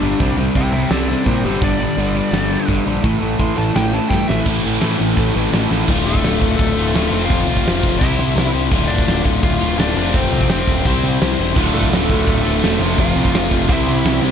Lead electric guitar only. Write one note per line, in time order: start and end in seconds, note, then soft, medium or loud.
0.00 0.36 D4 loud
0.56 0.72 E5 medium
0.56 0.72 G5 loud
0.73 0.90 E5 medium
0.73 0.90 G5 medium
0.91 1.07 A4 loud
0.91 1.08 D5 medium
1.08 1.25 A4 medium
1.08 1.26 D5 medium
1.24 1.42 E4 medium
1.24 1.43 C5 medium
1.44 1.61 G4 medium
1.44 1.62 C5 medium
1.64 2.66 D5 medium
3.40 3.57 C6 medium
3.58 3.75 A5 medium
3.75 3.94 G5 loud
3.94 4.10 A5 medium
4.10 4.27 G5 medium
4.28 4.45 E5 medium
6.07 6.56 A3 medium
6.07 6.55 A4 medium
6.56 7.26 A3 medium
6.56 7.31 A4 loud
7.26 7.99 F5 loud
7.30 7.97 F4 medium
7.99 8.51 E4 medium
7.99 8.49 E5 loud
8.88 9.22 D4 medium
8.88 9.22 D5 medium
9.44 9.76 F4 medium
9.44 9.80 F5 loud
9.78 9.95 D4 medium
9.78 9.96 D5 loud
9.97 10.13 D4 medium
9.97 10.15 D5 medium
10.14 10.47 C4 medium
10.14 10.51 C5 medium
10.50 11.17 C4 medium
10.50 11.18 C5 medium
11.74 12.25 A3 medium
11.74 12.28 A4 medium
12.29 12.95 A3 medium
12.29 12.95 A4 medium
13.00 13.67 F4 medium
13.00 13.72 F5 loud
13.73 14.21 E4 medium
13.73 14.21 E5 medium